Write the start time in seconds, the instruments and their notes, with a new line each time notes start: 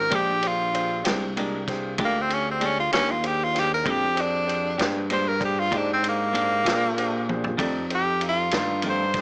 0.00 tenor saxophone A#4
0.09 fm bass A#1, clean electric guitar A#2 G#3 D4 G4, grand piano D4 G4 G#4 C5, kick, ride
0.15 tenor saxophone G4
0.42 grand piano D4 G4 G#4 C5, ride
0.48 tenor saxophone F4
0.73 grand piano D4 G4 G#4 C5, ride
1.03 grand piano D4 G4 G#4 C5, clean electric guitar D4 G4, snare, ride
1.07 fm bass C2, clean electric guitar G#3
1.37 clean electric guitar A#2 G#3 D4 G4, grand piano D4 G4 G#4 A#4, ride
1.68 grand piano D4 G4 G#4 C5, kick, snare, ride
1.98 fm bass D2, clean electric guitar A#2 G#3 D4 G4, grand piano D4 G4 G#4 D5, kick, ride
2.05 tenor saxophone A#3
2.22 tenor saxophone C4
2.28 grand piano D4 G4 G#4 D5, ride
2.34 tenor saxophone C#4
2.51 tenor saxophone C4
2.59 clean electric guitar A#2 G#3 D4, grand piano D4 G4 G#4 D5, ride
2.64 tenor saxophone C#4, clean electric guitar G4
2.80 tenor saxophone F4
2.91 fm bass D#2, tenor saxophone C#4, grand piano D4 G4 G#4 A#4, clean electric guitar D4 G4, snare, ride
2.96 clean electric guitar G#3
3.11 tenor saxophone F4
3.22 grand piano D4 G4 G#4 C5, ride
3.27 tenor saxophone G4
3.44 tenor saxophone F4
3.53 grand piano D4 G4 G#4 C5, snare, ride
3.60 tenor saxophone G4
3.74 tenor saxophone A#4
3.83 fm bass F2, clean electric guitar A#2 G#3, grand piano D4 G4 G#4 C5, kick, ride
3.88 clean electric guitar D4 G4, tenor saxophone G4
4.14 grand piano D4 G4 G#4 C5, ride
4.21 tenor saxophone D4
4.46 grand piano D4 G4 G#4 C5, ride
4.77 fm bass G2, grand piano D4 G4 G#4 C5, clean electric guitar D4 G4, snare, ride
4.82 clean electric guitar G#3
5.10 clean electric guitar A#2 G#3 D4 G4, grand piano D4 G4 G#4 C5, tenor saxophone C5, ride
5.28 tenor saxophone A#4
5.40 grand piano D4 G4 G#4 C5, kick, ride
5.45 tenor saxophone G4
5.60 tenor saxophone F4
5.71 fm bass G#2, clean electric guitar A#2 G#3 D4 G4, grand piano D4 G4 G#4 C5, kick, ride
5.77 tenor saxophone D4
5.93 tenor saxophone C4
6.02 grand piano D4 G4 G#4 C5, ride
6.09 tenor saxophone A#3
6.33 clean electric guitar A#2 G#3 D4 G4, grand piano D4 G4 G#4 C5, ride
6.64 fm bass A#2, clean electric guitar G#3 D4 G4, grand piano D4 G4 G#4 C5, snare, ride
6.97 grand piano D4 G4 G#4 C5, ride
7.28 grand piano D4 G4 G#4 C5, high tom
7.44 floor tom
7.57 clean electric guitar F2 D#3 A3 D4, fm bass F2, grand piano D#4 G4 A4 D5, kick, ride
7.89 grand piano D#4 G4 A4 C5, ride
7.95 tenor saxophone G4
8.20 grand piano D#4 G4 A4 F5, ride
8.29 tenor saxophone F4
8.51 fm bass G2, clean electric guitar D#3 A3 D4, grand piano D#4 G4 A4 D5, snare, ride
8.56 tenor saxophone F4
8.82 clean electric guitar F2 D#3 A3 D4, grand piano D#4 G4, ride
8.86 grand piano A4 F5, tenor saxophone C5
9.14 grand piano D#4 G4 A4 D5, kick, snare, ride